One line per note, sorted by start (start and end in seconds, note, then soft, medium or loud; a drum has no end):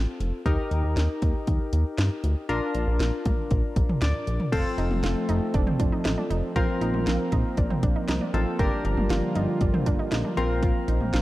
0.00 0.42 C4 medium
0.00 0.42 F4 medium
0.00 0.42 A4 medium
0.20 0.32 F1 medium
0.20 closed hi-hat medium
0.46 0.57 D#2 loud
0.46 2.45 D#4 medium
0.46 2.45 G4 medium
0.46 2.45 A#4 medium
0.46 kick loud
0.46 closed hi-hat medium
0.71 0.83 D#2 loud
0.71 closed hi-hat medium
0.84 0.95 D#2 medium
0.97 1.08 D#2 loud
0.97 snare loud
0.97 closed hi-hat medium
1.22 1.34 D#2 loud
1.22 kick medium
1.22 closed hi-hat medium
1.47 1.59 D#2 loud
1.47 kick medium
1.47 closed hi-hat medium
1.73 1.84 D#2 medium
1.73 closed hi-hat medium
1.98 2.10 G2 loud
1.98 snare loud
1.98 closed hi-hat medium
2.24 2.35 D2 medium
2.24 closed hi-hat medium
2.49 2.61 A#1 loud
2.49 4.48 D4 medium
2.49 4.48 F4 medium
2.49 4.48 A#4 medium
2.49 closed hi-hat medium
2.75 2.86 A#1 loud
2.75 closed hi-hat medium
2.87 2.99 A#1 loud
3.00 3.11 A#1 loud
3.00 snare loud
3.00 closed hi-hat medium
3.25 3.37 A#1 medium
3.25 kick medium
3.25 closed hi-hat medium
3.25 mid tom medium
3.51 3.62 A#1 loud
3.51 kick medium
3.51 closed hi-hat medium
3.76 3.88 A#1 medium
3.76 kick loud
3.76 closed hi-hat medium
3.89 mid tom medium
4.02 4.13 D2 medium
4.02 4.49 D5 medium
4.02 snare loud
4.02 closed hi-hat medium
4.27 4.39 A#1 medium
4.27 closed hi-hat medium
4.40 mid tom medium
4.52 4.64 F1 loud
4.52 8.55 F3 medium
4.52 6.54 A3 medium
4.52 6.52 C4 medium
4.52 6.54 C4 medium
4.52 6.52 F4 medium
4.52 4.75 F4 medium
4.52 6.52 A4 medium
4.52 kick loud
4.52 closed hi-hat medium
4.52 crash medium
4.78 4.90 F1 medium
4.78 5.01 D#4 medium
4.78 closed hi-hat medium
4.91 5.02 F1 loud
4.91 mid tom medium
5.03 5.15 F1 loud
5.03 5.26 F4 medium
5.03 snare loud
5.03 closed hi-hat medium
5.29 5.40 F1 loud
5.29 5.52 D#4 medium
5.29 closed hi-hat medium
5.54 5.66 F1 loud
5.54 5.66 D4 medium
5.54 kick medium
5.54 closed hi-hat medium
5.67 5.78 C4 medium
5.67 mid tom medium
5.80 5.91 F1 loud
5.80 5.91 D4 medium
5.80 kick loud
5.80 closed hi-hat medium
5.92 6.04 D#4 medium
6.05 6.17 A1 medium
6.05 6.16 D#4 medium
6.05 snare loud
6.05 closed hi-hat medium
6.18 6.29 D4 medium
6.18 mid tom medium
6.30 6.42 F1 medium
6.30 6.53 D#4 medium
6.30 closed hi-hat medium
6.56 6.67 A#1 loud
6.56 10.33 A#3 medium
6.56 8.30 C4 medium
6.56 8.57 C4 medium
6.56 8.30 F4 medium
6.56 6.79 F4 loud
6.56 8.30 A#4 medium
6.56 kick loud
6.56 closed hi-hat medium
6.81 6.93 A#1 loud
6.81 7.04 D#4 medium
6.81 closed hi-hat medium
6.94 7.06 A#1 loud
6.94 mid tom medium
7.07 7.18 A#1 loud
7.07 7.29 F4 medium
7.07 snare loud
7.07 closed hi-hat medium
7.32 7.44 A#1 loud
7.32 7.55 D#4 medium
7.32 kick medium
7.32 closed hi-hat medium
7.57 7.69 A#1 loud
7.57 7.69 D4 medium
7.57 kick loud
7.57 closed hi-hat medium
7.70 7.82 C4 medium
7.70 mid tom loud
7.83 7.95 A#1 loud
7.83 7.94 D4 medium
7.83 kick loud
7.83 closed hi-hat medium
7.96 8.07 D#4 medium
8.08 8.20 C2 medium
8.08 8.20 D#4 medium
8.08 snare loud
8.08 closed hi-hat medium
8.21 8.33 D4 medium
8.21 mid tom medium
8.34 8.45 A1 medium
8.34 8.59 C4 medium
8.34 8.57 D#4 medium
8.34 8.59 F4 medium
8.34 8.59 A4 medium
8.34 closed hi-hat medium
8.59 8.71 G1 loud
8.59 10.35 D3 medium
8.59 11.22 F3 medium
8.59 10.35 G3 medium
8.59 10.34 D4 medium
8.59 10.35 F4 medium
8.59 8.82 F4 loud
8.59 10.34 G4 medium
8.59 10.34 A#4 medium
8.59 kick loud
8.59 closed hi-hat medium
8.85 8.96 G1 loud
8.85 9.07 D4 medium
8.85 closed hi-hat medium
8.97 9.09 G1 medium
8.97 mid tom medium
9.10 9.22 G1 loud
9.10 9.33 F4 medium
9.10 snare loud
9.10 closed hi-hat medium
9.35 9.47 G1 loud
9.35 9.58 D#4 medium
9.35 closed hi-hat medium
9.61 9.73 G1 loud
9.61 9.72 D4 medium
9.61 kick loud
9.61 closed hi-hat medium
9.74 9.85 C4 medium
9.74 mid tom medium
9.86 9.98 G1 loud
9.86 9.98 D4 medium
9.86 kick loud
9.86 closed hi-hat medium
9.99 10.11 D#4 medium
10.12 10.24 A#1 loud
10.12 10.23 D#4 medium
10.12 snare loud
10.12 closed hi-hat medium
10.24 10.36 D4 medium
10.24 mid tom medium
10.37 10.72 A#1 loud
10.37 11.22 A#3 medium
10.37 11.22 C4 medium
10.37 11.22 F4 medium
10.37 10.60 F4 medium
10.37 11.22 A#4 medium
10.37 closed hi-hat medium
10.63 10.85 F4 medium
10.63 kick loud
10.63 closed hi-hat medium
10.88 11.00 A#1 loud
10.88 11.11 D#4 medium
10.88 closed hi-hat medium
11.01 11.12 A#1 loud
11.01 mid tom medium
11.13 11.22 A#1 loud
11.13 11.22 F4 medium
11.13 snare loud
11.13 closed hi-hat medium